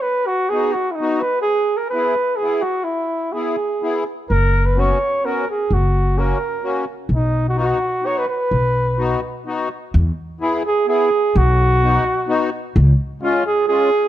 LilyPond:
<<
  \new Staff \with { instrumentName = "Flugelhorn" } { \time 3/4 \key b \major \tempo 4 = 128 b'8 fis'8 gis'8 fis'16. e'32 dis'8 b'8 | gis'8. ais'16 b'4 gis'8 fis'8 | e'4 gis'4. r8 | ais'8. b'16 cis''4 ais'8 gis'8 |
fis'4 ais'4. r8 | dis'8. fis'16 fis'4 cis''16 b'16 b'8~ | b'2 r4 | r4 e'8 gis'8 gis'4 |
fis'2~ fis'8 r8 | r4 eis'8 gis'8 gis'4 | }
  \new Staff \with { instrumentName = "Accordion" } { \time 3/4 \key b \major r4 <b dis' fis'>8 r8 <b dis' fis'>8 r8 | r4 <b e' gis'>8 r8 <b e' gis'>8 r8 | r4 <b e' gis'>8 r8 <b e' gis'>8 r8 | r4 <b cis' fis'>8 r8 <b cis' fis'>8 r8 |
r4 <ais cis' fis'>8 r8 <ais cis' fis'>8 r8 | r4 <b dis' fis'>8 r8 <b dis' fis'>8 r8 | r4 <b dis' fis'>8 r8 <b dis' fis'>8 r8 | r4 <b e' gis'>8 r8 <b e' gis'>8 r8 |
r4 <b dis' fis'>8 r8 <b dis' fis'>8 r8 | r4 <gis cis' eis'>8 r8 <gis cis' eis'>8 r8 | }
  \new Staff \with { instrumentName = "Upright bass" } { \clef bass \time 3/4 \key b \major r2. | r2. | r2. | fis,,2 r4 |
fis,,2 r4 | b,,2 r4 | b,,2 r4 | e,8 r2 r8 |
b,,2 r4 | cis,8 r2 r8 | }
>>